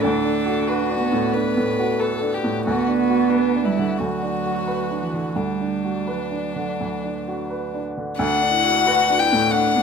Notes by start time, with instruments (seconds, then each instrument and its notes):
Already playing: upright piano A2
0.01 upright piano D2, cello D4, violin A4
0.25 upright piano D4
0.46 upright piano F#4
0.68 violin F#4, upright piano B4
0.90 upright piano D4
1.00 cello B3
1.12 upright piano A2
1.34 upright piano D4, violin B4
1.57 upright piano A2
1.79 upright piano F#4
2.00 violin A4, upright piano B4
2.22 upright piano D4
2.34 violin G4
2.44 upright piano A2
2.64 upright piano D2, cello B3, violin F#4
2.88 upright piano D4
3.00 violin F#4
3.10 upright piano F#4
3.30 violin D4, upright piano B4
3.56 upright piano D4
3.65 cello G3, violin E4
3.79 upright piano D3
3.97 upright piano D2, cello F#3, violin F#4
4.23 upright piano D4
4.46 upright piano F#4
4.67 upright piano B4
4.91 upright piano D4
5.02 cello E3
5.13 upright piano D3
5.36 upright piano D2, cello G3, violin D4
5.61 upright piano D4
5.84 upright piano F#4
6.07 cello F#3, upright piano B4
6.31 upright piano D4
6.56 upright piano D3
6.80 upright piano D2
7.04 upright piano D4
7.28 upright piano F#4
7.50 upright piano B4
7.74 upright piano D4
7.97 upright piano D3
8.17 upright piano D2, cello D4, violin F#5
8.42 upright piano D4
8.51 cello E4
8.64 upright piano F#4
8.85 cello F#4, upright piano B4
9.10 upright piano D4
9.18 cello E4, violin G5
9.32 upright piano A2
9.51 cello D4, upright piano D4, violin F#5
9.76 upright piano A2